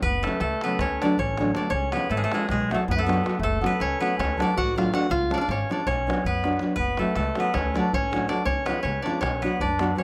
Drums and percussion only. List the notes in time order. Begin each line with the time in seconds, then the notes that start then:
0.02 davul low
0.24 davul high
0.33 davul high
0.40 davul high
0.61 davul high
0.70 davul high
0.79 davul high, davul low
1.02 davul high
1.10 davul high
1.18 davul low
1.37 davul high
1.45 davul high
1.55 davul high
1.63 davul high
1.71 davul low
1.92 davul high
2.01 davul high
2.10 davul high
2.32 davul high
2.40 davul high
2.49 davul high, davul low
2.71 davul high
2.81 davul high
2.89 davul low
3.09 davul high
3.18 davul high
3.26 davul high
3.35 davul high
3.44 davul low
3.64 davul high
3.72 davul high
3.80 davul high
4.03 davul high
4.11 davul high
4.20 davul high, davul low
4.40 davul high
4.50 davul high
4.58 davul low
4.78 davul high
4.86 davul high
4.94 davul high
5.03 davul high
5.11 davul low
5.21 davul high
5.31 davul high
5.40 davul high
5.49 davul high
5.61 davul high
5.71 davul high
5.80 davul high
5.88 davul high, davul low
5.99 davul high
6.10 davul high
6.17 davul high
6.25 davul low
6.35 davul high
6.44 davul high
6.53 davul high
6.59 davul high
6.69 davul high
6.76 davul low
6.97 davul high
7.08 davul high
7.16 davul high
7.35 davul high
7.45 davul high
7.54 davul high, davul low
7.76 davul high
7.85 davul high
7.93 davul low
8.13 davul high
8.22 davul high
8.29 davul high
8.38 davul high
8.46 davul low
8.66 davul high
8.76 davul high
8.85 davul high
9.06 davul high
9.14 davul high
9.23 davul high, davul low
9.43 davul high
9.52 davul high
9.60 davul low
9.79 davul high
9.87 davul high